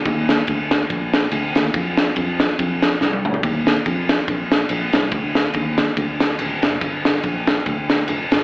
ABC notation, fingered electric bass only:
X:1
M:4/4
L:1/8
Q:"Swing" 1/4=142
K:Eblyd
V:1 name="Fingered electric bass" clef=bass
E,,2 D,,2 B,,,2 D,, E,, | F,,2 F,,2 F,,2 C,, D,, | E,,2 F,,2 B,,,2 B,,, C,, | D,,2 E,,2 D,,2 E,,, ^F,,, |
G,,,2 B,,,2 D,,2 F,,, G,,, |]